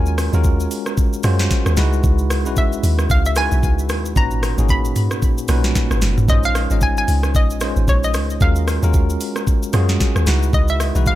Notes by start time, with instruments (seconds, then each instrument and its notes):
Already playing: log drum bass D#2, tine electric piano G#3 C#4 F4 F#4 A#4, synth pluck G#5
0.06 shaker
0.18 cross-stick, open hi-hat, shaker
0.33 log drum bass D#2, tine electric piano G#3 C#4 F4 F#4 A#4, shaker
0.44 kick, shaker
0.60 shaker
0.71 open hi-hat, shaker
0.86 cross-stick, shaker
0.98 kick, shaker
1.13 shaker
1.23 log drum bass F#2, tine electric piano G#3 C#4 F4 F#4 C5, cross-stick, open hi-hat, shaker
1.39 snare, shaker
1.51 kick, snare, shaker
1.66 log drum bass D#2, cross-stick, shaker
1.77 log drum bass C#2, tine electric piano G#3 D#4 E4 F#4 B4, snare, open hi-hat, shaker
1.93 shaker
2.04 log drum bass C#2, kick, shaker
2.18 shaker
2.30 cross-stick, open hi-hat, shaker
2.45 log drum bass B1, tine electric piano G#3 C#4 E4 F#4 B4, shaker
2.56 synth pluck E5, kick, shaker
2.73 shaker
2.83 log drum bass D#2, open hi-hat, shaker
2.99 cross-stick, shaker
3.10 log drum bass C#2, synth pluck F5, kick, shaker
3.25 synth pluck E5, shaker
3.36 tine electric piano G#3 D#4 E4 F#4 B4, synth pluck G#5, cross-stick, open hi-hat, shaker
3.52 log drum bass B1, shaker
3.63 log drum bass C#2, kick, shaker
3.79 shaker
3.89 log drum bass D#2, cross-stick, open hi-hat, shaker
4.05 shaker
4.16 log drum bass G#1, tine electric piano A#2 C#4 D#4 F#4 B4, synth pluck A#5, kick, shaker
4.31 shaker
4.43 cross-stick, open hi-hat, shaker
4.58 log drum bass G#1, tine electric piano A#3 C#4 D#4 F#4 G#4, shaker
4.69 synth pluck B5, kick, shaker
4.85 shaker
4.96 mid tom, open hi-hat, shaker
5.11 cross-stick, shaker
5.22 kick, shaker
5.38 shaker
5.48 log drum bass B1, tine electric piano A#2 C#4 D#4 F#4 B4, cross-stick, open hi-hat, shaker
5.64 snare, shaker
5.75 kick, snare, shaker
5.91 log drum bass G#1, cross-stick, shaker
6.02 log drum bass F#1, snare, open hi-hat, shaker
6.18 mid tom, shaker
6.28 log drum bass A#1, tine electric piano G#3 C#4 D#4 F4 C5, synth pluck D#5, kick, shaker
6.43 synth pluck F5, shaker
6.55 cross-stick, open hi-hat, shaker
6.70 log drum bass G#1, tine electric piano G#3 C#4 D#4 F4 D#5, shaker
6.81 synth pluck G#5, kick, shaker
6.97 synth pluck G#5, shaker
7.08 log drum bass C#2, open hi-hat, shaker
7.23 cross-stick, shaker
7.35 log drum bass A#1, synth pluck D#5, kick, shaker
7.50 shaker
7.61 tine electric piano G#3 C#4 D#4 F4 C5, cross-stick, open hi-hat, shaker
7.76 log drum bass G#1, shaker
7.88 log drum bass A#1, synth pluck C#5, kick, shaker
8.03 synth pluck D#5, shaker
8.14 log drum bass C#2, cross-stick, open hi-hat, shaker
8.30 shaker
8.40 log drum bass D#2, tine electric piano G#3 C#4 F4 F#4 A#4, synth pluck F5, kick, shaker
8.56 shaker
8.68 cross-stick, open hi-hat, shaker
8.82 log drum bass D#2, tine electric piano G#3 C#4 F4 F#4 A#4, shaker
8.94 kick, shaker
9.10 shaker
9.21 open hi-hat, shaker
9.36 cross-stick, shaker
9.47 kick, shaker
9.63 shaker
9.73 log drum bass F#2, tine electric piano G#3 C#4 F4 F#4 G#4, cross-stick, open hi-hat, shaker
9.89 snare, shaker
10.00 kick, snare, shaker
10.16 log drum bass D#2, cross-stick, shaker
10.26 log drum bass C#2, tine electric piano G#3 D#4 E4 F#4 B4, snare, open hi-hat, shaker
10.43 shaker
10.53 log drum bass C#2, synth pluck D#5, kick, shaker
10.68 synth pluck E5, shaker
10.80 cross-stick, open hi-hat, shaker
10.95 log drum bass B1, tine electric piano E3 G#3 D#4 F#4 B4, shaker
11.06 synth pluck F5, kick, shaker